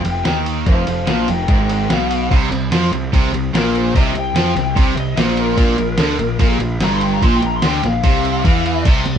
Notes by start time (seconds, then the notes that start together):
Already playing: G5
0.04 F1 F2, ride
0.25 D#2 D#3, snare, ride
0.46 ride
0.66 F1 F2 C5 F5, kick, ride
0.87 F1 F2 C5 F5, ride
1.07 A#1 A#2 C5 F5, snare, ride
1.28 F1 F2 D#5 G5, ride
1.48 G#1 G#2 D#5 G5, kick, ride
1.69 D#5 G5, ride
1.90 B1 B2 F5, snare, ride
2.11 ride
2.31 C2 C3, kick, crash
2.51 C2 C3, ride
2.71 F2 F3, snare, ride
2.92 C2 C3, ride
3.13 C2 C3, kick, ride
3.33 C2 C3, ride
3.53 A#1 A#2, snare, ride
3.57 A#4
3.75 C5, ride
3.95 C2 C3 D#5, kick, ride
4.14 C2 C3, ride
4.19 G5
4.34 F2 F3, snare, ride
4.55 C2 C3, snare, ride
4.76 C2 C3, kick, ride
4.96 C2 C3, ride
5.00 D#5
5.17 A#1 A#2 C5, snare, ride
5.37 A#4, ride
5.57 A#1 A#2, kick, ride
5.78 A#1 A#2, ride
5.98 D2 D3, snare, ride
6.18 A#1 A#2, ride
6.39 A#1 A#2, kick, ride
6.59 A#1 A#2, ride
6.80 G1 G2 A#5, snare, ride
6.93 C6
7.01 G5, ride
7.13 A#5
7.22 A#1 A#2 C6, kick, ride
7.36 G5
7.42 A#1 A#2 A#5, ride
7.56 C6
7.62 D2 D3, snare, ride
7.66 G5
7.83 A#1 A#2 F5, snare, ride
8.04 C2 C3, kick, ride
8.25 ride
8.44 E2 E3, kick, ride
8.66 ride
8.85 C2 C3, kick, crash, ride
9.06 C2 C3, ride